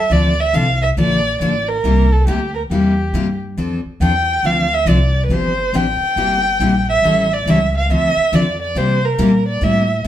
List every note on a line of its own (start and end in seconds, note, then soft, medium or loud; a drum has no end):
0.00 0.13 E5 medium
0.10 0.52 D2 medium
0.10 0.32 D3 medium
0.10 0.33 F3 medium
0.10 0.33 C4 medium
0.10 0.33 D4 medium
0.10 0.33 A4 medium
0.10 0.41 D5 medium
0.40 0.56 E5 medium
0.53 0.96 C2 medium
0.53 0.65 D3 medium
0.53 0.66 F3 medium
0.53 0.66 C4 medium
0.53 0.66 D4 medium
0.53 0.66 A4 medium
0.53 0.82 F5 medium
0.82 0.89 E5 medium
0.97 1.39 A#1 medium
0.97 1.19 D3 medium
0.97 1.19 F3 medium
0.97 1.20 A#3 medium
0.97 1.20 D4 medium
0.97 1.20 A4 medium
0.97 1.39 D5 medium
1.40 1.82 A1 medium
1.40 1.52 D3 medium
1.40 1.53 F3 medium
1.40 1.53 A#3 medium
1.40 1.53 D4 medium
1.40 1.53 A4 medium
1.40 1.70 D5 medium
1.69 2.14 A#4 medium
1.84 2.26 C2 medium
1.84 2.06 C3 medium
1.84 2.06 G3 medium
1.84 2.06 A#3 medium
1.84 2.06 E4 medium
1.84 2.06 G4 medium
2.12 2.27 A4 medium
2.27 2.69 D2 medium
2.27 2.39 C3 medium
2.27 2.39 G3 medium
2.27 2.39 A#3 medium
2.27 2.39 E4 medium
2.27 2.53 G4 medium
2.27 2.39 G4 medium
2.55 2.62 A#4 medium
2.70 3.12 E2 medium
2.70 2.93 C3 medium
2.70 2.93 G3 medium
2.70 2.93 A#3 medium
2.70 2.93 E4 medium
2.70 3.38 G4 medium
2.70 2.93 G4 medium
3.13 3.56 G2 medium
3.13 3.25 C3 medium
3.13 3.26 G3 medium
3.13 3.26 A#3 medium
3.13 3.26 E4 medium
3.13 3.26 G4 medium
3.57 3.83 F2 medium
3.57 3.79 F3 medium
3.57 3.79 C4 medium
3.57 3.80 D4 medium
3.57 3.80 A4 medium
3.85 muted upright bass stroke soft
4.00 4.42 E2 medium
4.00 4.12 F3 medium
4.00 4.12 C4 medium
4.00 4.13 D4 medium
4.00 4.13 A4 medium
4.00 4.47 G5 medium
4.43 4.85 D2 medium
4.43 4.66 D3 medium
4.43 4.66 F3 medium
4.43 4.66 C4 medium
4.43 4.66 D4 medium
4.43 4.66 A4 medium
4.43 4.75 F5 medium
4.74 4.90 E5 medium
4.85 5.28 C2 medium
4.85 4.98 D3 medium
4.85 4.98 F3 medium
4.85 4.98 C4 medium
4.85 4.99 D4 medium
4.85 4.99 A4 medium
4.85 5.25 D5 medium
5.25 5.71 G1 medium
5.25 5.33 B4 medium
5.30 5.52 C3 medium
5.30 5.52 F3 medium
5.30 5.52 C4 medium
5.30 5.52 D4 medium
5.30 5.52 G4 medium
5.30 5.77 C5 medium
5.73 5.99 A1 medium
5.73 5.85 C3 medium
5.73 5.85 F3 medium
5.73 5.85 C4 medium
5.73 5.86 D4 medium
5.73 5.86 G4 medium
5.73 6.89 G5 loud
6.00 muted upright bass stroke soft
6.16 6.58 G1 medium
6.16 6.38 C3 medium
6.16 6.38 G3 medium
6.16 6.39 A#3 medium
6.16 6.39 E4 medium
6.16 6.39 G4 medium
6.60 7.02 A#1 medium
6.60 6.71 C3 medium
6.60 6.72 G3 medium
6.60 6.72 A#3 medium
6.60 6.72 E4 medium
6.60 6.72 G4 medium
6.90 7.35 E5 medium
7.02 7.45 A1 medium
7.02 7.25 E3 medium
7.02 7.25 G3 medium
7.02 7.25 C#4 medium
7.02 7.26 E4 medium
7.02 7.26 A4 medium
7.33 7.51 D5 medium
7.46 7.88 C#2 medium
7.46 7.58 E3 medium
7.46 7.58 G3 medium
7.46 7.59 C#4 medium
7.46 7.59 E4 loud
7.46 7.59 A4 medium
7.46 7.75 E5 medium
7.77 7.90 F5 medium
7.89 8.15 D2 medium
7.89 8.11 D3 medium
7.89 8.12 F3 medium
7.89 8.12 C4 medium
7.89 8.12 D4 medium
7.89 8.12 A4 medium
7.89 8.37 E5 medium
8.16 muted upright bass stroke soft
8.32 8.74 F2 medium
8.32 8.44 D3 medium
8.32 8.44 F3 medium
8.32 8.44 C4 medium
8.32 8.45 D4 medium
8.32 8.45 A4 medium
8.32 8.61 D5 medium
8.62 8.79 D5 medium
8.75 9.17 C3 medium
8.75 8.97 C3 medium
8.75 8.98 G3 medium
8.75 8.98 A#3 medium
8.75 8.98 E4 medium
8.75 8.98 G4 medium
8.75 9.07 C5 medium
9.05 9.47 A#4 medium
9.18 9.61 A#2 medium
9.18 9.30 C3 medium
9.18 9.30 G3 medium
9.18 9.31 A#3 medium
9.18 9.30 E4 medium
9.18 9.31 G4 medium
9.48 9.65 D5 medium
9.61 10.04 A2 medium
9.61 9.83 C3 medium
9.61 9.84 G3 medium
9.61 9.84 A#3 medium
9.61 9.84 E4 medium
9.61 9.84 G4 medium
9.61 10.06 E5 medium